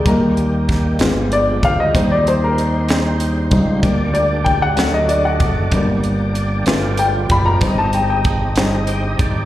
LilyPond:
<<
  \new Staff \with { instrumentName = "Tonewheel organ" } { \time 6/8 \key g \minor \tempo 4. = 63 << { r2. | r2. | r2. | r2. |
r2 g''16 ees''16 d''8 | } \\ { <ees g bes fis' g'>4. <f aes b g'>4. | <g c' ees' c''>2. | <bes d' g' d''>4. <a d' fis' d''>4. | <bes d' g' d''>4. <b f' g' d''>4. |
<c' ees' g' d'' ees''>2. | } >> }
  \new Staff \with { instrumentName = "Grand piano" } { \time 6/8 \key g \minor bes'4. r8 d''8 f''16 ees''16~ | ees''16 d''16 c''16 bes'4. r8. | r8 d''8 g''16 fis''8 ees''16 d''16 fis''8.~ | fis''8. r4 r16 g''8 b''16 bes''16~ |
bes''16 a''16 g''16 g''4. r8. | }
  \new Staff \with { instrumentName = "Grand piano" } { \time 6/8 \key g \minor <g bes ees'>4. <aes b f'>8 r4 | <g c' ees'>4. r4 <g c' ees'>8 | <g bes d'>8 r4 <fis a d'>4. | <g bes d'>4. <a b f'>8 r4 |
<g c' ees'>4. <g c' ees'>8 r4 | }
  \new Staff \with { instrumentName = "Fingered electric bass" } { \clef bass \time 6/8 \key g \minor ees,4. g,,4 d,8 | ees,2~ ees,8 cis,8 | d,4. d,4 fis,,8 | g,,4. g,,4 fis,,8 |
g,,2~ g,,8 aes,,8 | }
  \new DrumStaff \with { instrumentName = "Drums" } \drummode { \time 6/8 <hh bd>8 hh8 <hh bd sn>8 <hh sn>8 hh8 <hh bd>8 | <hh bd>8 hh8 hh8 <hh sn>8 hh8 <hh bd>8 | <hh bd>8 hh8 <hh bd>8 <hh sn>8 hh8 <hh bd>8 | <hh bd>8 hh8 hh8 <hh sn>8 hh8 <hh bd>8 |
<hh bd>8 hh8 <hh bd>8 <hh sn>8 hh8 <hh bd>8 | }
>>